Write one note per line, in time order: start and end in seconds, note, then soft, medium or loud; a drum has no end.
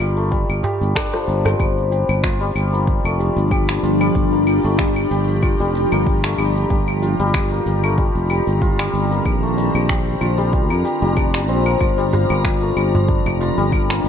0.00 0.43 G1 medium
0.00 0.30 G3 loud
0.00 0.23 A#3 medium
0.00 2.23 F4 medium
0.00 0.63 G4 medium
0.00 darbuka tek soft
0.00 claves medium
0.00 shaker medium
0.17 1.33 A3 medium
0.17 shaker soft
0.31 1.58 G3 medium
0.31 kick loud
0.31 shaker soft
0.49 0.61 G1 medium
0.49 claves medium
0.49 shaker soft
0.63 1.91 G4 medium
0.63 darbuka tek medium
0.63 darbuka dum medium
0.63 shaker medium
0.81 0.93 G1 medium
0.81 shaker soft
0.95 4.69 D4 loud
0.95 finger snap loud
0.95 kick loud
0.95 cross-stick medium
0.95 claves medium
0.95 shaker soft
1.13 1.65 F3 medium
1.13 cross-stick medium
1.13 darbuka tek soft
1.13 shaker soft
1.27 1.53 G1 medium
1.27 2.72 A#3 medium
1.27 shaker medium
1.45 5.45 C4 medium
1.45 cross-stick medium
1.45 darbuka dum medium
1.45 claves medium
1.45 shaker soft
1.59 2.03 G1 medium
1.59 6.70 F3 medium
1.59 2.39 G3 medium
1.59 kick loud
1.59 claves medium
1.59 shaker soft
1.78 shaker soft
1.91 7.73 D4 medium
1.91 3.51 G4 medium
1.91 shaker medium
2.09 2.50 G1 medium
2.09 claves medium
2.09 shaker soft
2.23 3.83 F4 medium
2.23 finger snap medium
2.23 kick loud
2.23 shaker soft
2.31 10.28 G4 medium
2.41 3.18 G3 loud
2.41 shaker soft
2.55 2.99 G1 medium
2.55 claves medium
2.55 shaker medium
2.73 3.11 A#3 medium
2.73 shaker soft
2.87 kick loud
2.87 shaker soft
3.05 3.29 F1 loud
3.05 4.39 A3 medium
3.05 claves medium
3.05 shaker soft
3.09 14.09 A#5 medium
3.19 4.00 G3 medium
3.19 shaker medium
3.36 3.78 G1 loud
3.36 shaker soft
3.51 5.10 G4 medium
3.51 kick loud
3.51 claves medium
3.51 shaker soft
3.69 finger snap medium
3.69 shaker soft
3.83 4.09 G1 medium
3.83 5.42 F4 medium
3.83 shaker medium
4.01 4.78 G3 loud
4.01 claves medium
4.01 shaker soft
4.15 4.58 G1 loud
4.15 kick loud
4.15 shaker soft
4.33 4.70 A#3 medium
4.33 shaker soft
4.47 claves medium
4.47 shaker medium
4.64 5.06 G1 loud
4.64 5.98 A3 medium
4.64 shaker soft
4.79 5.59 G3 medium
4.79 finger snap medium
4.79 kick loud
4.79 shaker soft
4.96 claves medium
4.96 shaker soft
5.11 5.54 G1 medium
5.11 6.70 G4 medium
5.11 shaker medium
5.28 shaker soft
5.42 7.02 F4 medium
5.42 kick loud
5.42 claves medium
5.42 shaker soft
5.60 5.84 F1 loud
5.60 6.37 G3 loud
5.60 shaker soft
5.75 shaker medium
5.92 6.33 G1 loud
5.92 6.30 A#3 medium
5.92 claves medium
5.92 shaker soft
6.07 kick loud
6.07 shaker soft
6.24 7.58 A3 medium
6.24 finger snap medium
6.24 shaker soft
6.38 6.64 G1 medium
6.38 6.75 G3 medium
6.38 claves medium
6.38 shaker medium
6.56 shaker soft
6.70 7.13 G1 loud
6.70 9.26 D#3 medium
6.70 8.30 G4 medium
6.70 kick loud
6.70 shaker soft
6.88 claves medium
6.88 shaker soft
7.02 8.62 F4 medium
7.02 shaker medium
7.20 7.61 G1 loud
7.20 7.97 G3 loud
7.20 shaker soft
7.34 finger snap medium
7.34 kick loud
7.34 claves medium
7.34 shaker soft
7.52 7.90 A#3 medium
7.52 shaker soft
7.58 13.86 C4 medium
7.66 8.09 G1 medium
7.66 shaker medium
7.84 9.17 A3 medium
7.84 claves medium
7.84 shaker soft
7.98 8.78 G3 medium
7.98 kick loud
7.98 shaker soft
8.15 8.39 F1 loud
8.15 shaker soft
8.30 9.89 G4 medium
8.30 claves medium
8.30 shaker medium
8.47 8.88 G1 medium
8.47 shaker soft
8.62 10.21 F4 medium
8.62 kick loud
8.62 shaker soft
8.79 9.31 G3 loud
8.79 finger snap medium
8.79 claves medium
8.79 shaker soft
8.93 9.19 G1 medium
8.93 shaker medium
9.11 9.49 A#3 medium
9.11 shaker soft
9.25 9.69 A#1 loud
9.25 11.81 D3 medium
9.25 kick loud
9.25 claves medium
9.25 shaker soft
9.43 10.76 A3 medium
9.43 shaker soft
9.57 10.37 G3 medium
9.57 shaker medium
9.75 10.16 A#1 medium
9.75 claves medium
9.75 shaker soft
9.89 10.84 G4 medium
9.89 finger snap medium
9.89 kick loud
9.89 shaker soft
10.07 13.86 F4 medium
10.07 shaker soft
10.21 10.71 A#1 medium
10.21 11.80 F4 medium
10.21 claves medium
10.21 shaker medium
10.38 11.01 G3 medium
10.38 shaker soft
10.53 kick loud
10.53 shaker soft
10.70 10.82 F2 loud
10.70 11.65 A#3 medium
10.70 claves medium
10.70 shaker soft
10.85 13.98 G4 medium
10.85 shaker medium
11.02 11.49 F1 loud
11.02 11.86 G3 medium
11.02 shaker soft
11.16 13.08 D4 medium
11.16 kick loud
11.16 claves medium
11.16 shaker soft
11.34 finger snap medium
11.34 shaker soft
11.48 11.74 A#1 medium
11.48 14.09 C4 medium
11.48 shaker medium
11.65 12.30 A#3 loud
11.65 claves medium
11.65 shaker soft
11.80 12.24 G1 loud
11.80 14.09 F3 medium
11.80 13.40 F4 medium
11.80 kick loud
11.80 claves medium
11.80 shaker soft
11.98 12.75 G3 loud
11.98 shaker soft
12.13 darbuka ka medium
12.13 darbuka tek medium
12.13 darbuka dum medium
12.13 shaker medium
12.30 12.71 G1 loud
12.30 12.68 A#3 medium
12.30 claves medium
12.30 shaker soft
12.43 14.09 D4 medium
12.43 finger snap medium
12.43 kick loud
12.43 shaker soft
12.62 13.96 A3 medium
12.62 shaker soft
12.77 13.20 G1 medium
12.77 13.56 G3 medium
12.77 claves medium
12.77 shaker medium
12.95 darbuka dum medium
12.95 shaker soft
13.08 14.09 D4 medium
13.08 kick loud
13.08 shaker soft
13.19 14.09 G4 medium
13.26 13.50 F1 loud
13.26 darbuka tek medium
13.26 claves medium
13.26 shaker soft
13.40 14.09 F4 medium
13.40 darbuka ka medium
13.40 darbuka tek medium
13.40 shaker medium
13.58 13.99 G1 medium
13.58 14.09 G3 loud
13.58 shaker soft
13.72 kick loud
13.72 claves medium
13.72 shaker soft
13.90 14.09 A#3 medium
13.90 finger snap medium
13.90 shaker soft
14.04 14.09 G1 medium
14.04 shaker medium